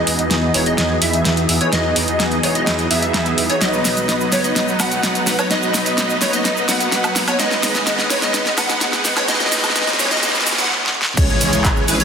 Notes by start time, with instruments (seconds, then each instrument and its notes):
Already playing: supersaw synth E3 B3 D#4 G#4 D#5, analog synth pad E3 B3 F#4 G#4, digital synth lead D#5, riser
0.07 detuned saw bass E2, open hi-hat
0.19 detuned saw bass E2, closed hi-hat
0.31 detuned saw bass E2, snare, closed hi-hat
0.54 detuned saw bass E1, supersaw synth E3 B3 D#4 G#4 C#5, digital synth lead C#5, open hi-hat
0.66 supersaw synth E3 B3 D#4 G#4 D#5, digital synth lead D#5, closed hi-hat
0.78 detuned saw bass E2, snare, closed hi-hat
1.02 detuned saw bass E2, supersaw synth E3 B3 D#4 G#4 E5, digital synth lead E5, open hi-hat
1.13 closed hi-hat
1.25 detuned saw bass E2, snare, closed hi-hat
1.37 closed hi-hat
1.49 detuned saw bass E2, open hi-hat
1.61 supersaw synth E3 B3 D#4 G#4 C#5, digital synth lead C#5, closed hi-hat
1.72 detuned saw bass E2, supersaw synth E3 B3 D#4 G#4 D#5, digital synth lead D#5, snare, closed hi-hat
1.96 detuned saw bass E2, open hi-hat
2.08 detuned saw bass E2, closed hi-hat
2.20 detuned saw bass E2, snare, closed hi-hat
2.32 closed hi-hat
2.43 detuned saw bass E1, supersaw synth E3 B3 D#4 G#4 C#5, digital synth lead C#5, open hi-hat
2.55 supersaw synth E3 B3 D#4 G#4 D#5, digital synth lead D#5, closed hi-hat
2.67 detuned saw bass E2, snare, closed hi-hat
2.79 closed hi-hat
2.90 detuned saw bass E2, supersaw synth E3 B3 D#4 G#4 E5, digital synth lead E5, open hi-hat
3.02 closed hi-hat
3.14 detuned saw bass E2, snare, closed hi-hat
3.26 closed hi-hat
3.38 detuned saw bass E2, open hi-hat
3.50 supersaw synth E3 B3 D#4 G#4 C#5, digital synth lead C#5, closed hi-hat
3.61 detuned saw bass B1, analog synth pad F#3 B3, supersaw synth F#3 B3 D#4 B4 D#5, digital synth lead D#5, snare, closed hi-hat, cabasa
3.73 cabasa
3.85 detuned saw bass B1, snare, open hi-hat, cabasa
3.97 detuned saw bass B1, closed hi-hat, cabasa
4.09 detuned saw bass B1, snare, closed hi-hat, cabasa
4.21 cabasa
4.32 detuned saw bass F#1, supersaw synth F#3 B3 D#4 B4 C#5, digital synth lead C#5, snare, open hi-hat, cabasa
4.44 supersaw synth F#3 B3 D#4 B4 D#5, digital synth lead D#5, closed hi-hat, cabasa
4.56 detuned saw bass B1, snare, closed hi-hat, cabasa
4.68 cabasa
4.80 detuned saw bass B1, supersaw synth F#3 B3 D#4 B4 F#5, digital synth lead F#5, snare, open hi-hat, cabasa, high woodblock
4.92 closed hi-hat, cabasa
5.03 detuned saw bass B1, snare, closed hi-hat, cabasa
5.15 closed hi-hat, cabasa
5.27 detuned saw bass B1, snare, open hi-hat, cabasa
5.39 supersaw synth F#3 B3 D#4 B4 C#5, digital synth lead C#5, closed hi-hat, cabasa, high woodblock
5.51 detuned saw bass B1, supersaw synth F#3 B3 D#4 B4 D#5, digital synth lead D#5, snare, closed hi-hat, cabasa
5.63 cabasa
5.74 detuned saw bass B1, snare, open hi-hat, cabasa
5.86 detuned saw bass B1, closed hi-hat, cabasa
5.98 detuned saw bass B1, snare, closed hi-hat, cabasa
6.10 cabasa
6.21 detuned saw bass F#1, supersaw synth F#3 B3 D#4 B4 C#5, digital synth lead C#5, snare, open hi-hat, cabasa
6.33 supersaw synth F#3 B3 D#4 B4 D#5, digital synth lead D#5, closed hi-hat, cabasa
6.45 detuned saw bass B1, snare, closed hi-hat, cabasa
6.57 cabasa
6.68 detuned saw bass B1, supersaw synth F#3 B3 D#4 B4 F#5, digital synth lead F#5, snare, open hi-hat, cabasa
6.80 closed hi-hat, cabasa
6.92 detuned saw bass B1, snare, closed hi-hat, cabasa
7.04 closed hi-hat, cabasa, high woodblock
7.16 detuned saw bass B1, snare, open hi-hat, cabasa
7.28 supersaw synth F#3 B3 D#4 B4 C#5, digital synth lead C#5, closed hi-hat, cabasa, high woodblock
7.39 detuned saw bass G#1, analog synth pad G#3 B3, supersaw synth G#3 B3 D#4 B4 D#5, digital synth lead D#5, snare, closed hi-hat, cabasa
7.51 snare, cabasa
7.63 detuned saw bass G#1, snare, open hi-hat, cabasa
7.75 detuned saw bass G#1, snare, closed hi-hat, cabasa
7.87 detuned saw bass G#1, snare, closed hi-hat, cabasa
7.99 snare, cabasa
8.10 detuned saw bass G#2, supersaw synth G#3 B3 D#4 B4 C#5, digital synth lead C#5, snare, open hi-hat, cabasa
8.22 supersaw synth G#3 B3 D#4 B4 D#5, digital synth lead D#5, snare, closed hi-hat, cabasa
8.34 detuned saw bass G#1, snare, closed hi-hat, cabasa
8.46 snare, cabasa
8.58 detuned saw bass G#1, supersaw synth G#3 B3 D#4 B4 F#5, digital synth lead F#5, snare, open hi-hat, cabasa, high woodblock
8.69 snare, closed hi-hat, cabasa
8.81 detuned saw bass G#1, snare, closed hi-hat, cabasa
8.93 snare, closed hi-hat, cabasa
9.05 detuned saw bass G#1, snare, open hi-hat, cabasa
9.17 supersaw synth G#3 B3 D#4 B4 C#5, digital synth lead C#5, snare, closed hi-hat, cabasa, high woodblock
9.28 detuned saw bass G#1, supersaw synth G#3 B3 D#4 B4 D#5, digital synth lead D#5, snare, closed hi-hat, noise sweep, cabasa
9.34 snare
9.40 snare, closed hi-hat, cabasa
9.46 snare
9.52 detuned saw bass G#1, snare, open hi-hat, cabasa
9.58 snare
9.64 detuned saw bass G#1, snare, closed hi-hat, cabasa, high woodblock
9.70 snare
9.76 detuned saw bass G#1, snare, closed hi-hat, cabasa
9.82 snare
9.87 snare, closed hi-hat, cabasa
9.93 snare
9.99 detuned saw bass G#2, supersaw synth G#3 B3 D#4 B4 C#5, digital synth lead C#5, snare, open hi-hat, cabasa
10.05 snare
10.11 supersaw synth G#3 B3 D#4 B4 D#5, digital synth lead D#5, snare, closed hi-hat, cabasa
10.17 snare
10.23 detuned saw bass G#2, snare, closed hi-hat, cabasa
10.29 snare
10.35 snare, closed hi-hat, cabasa
10.41 snare
10.47 detuned saw bass G#1, snare, open hi-hat, cabasa
10.52 snare
10.58 supersaw synth G#3 B3 D#4 B4 F#5, digital synth lead F#5, snare, closed hi-hat, cabasa
10.64 snare
10.70 snare
10.86 snare
11.02 snare
11.17 detuned saw bass C#2, supersaw synth E3 G#3 C#4 G#4 C#5, analog synth pad G#3 C#4 E4, digital synth lead C#5, kick, closed hi-hat, crash, impact, cabasa
11.29 cabasa
11.41 detuned saw bass C#2, open hi-hat, cabasa
11.53 detuned saw bass C#2, closed hi-hat, cabasa
11.65 kick, clap, closed hi-hat, cabasa
11.77 cabasa
11.88 detuned saw bass G#1, supersaw synth E3 G#3 C#4 G#4 B4, digital synth lead B4, open hi-hat, cabasa
12.00 supersaw synth E3 G#3 C#4 G#4 C#5, digital synth lead C#5, closed hi-hat, cabasa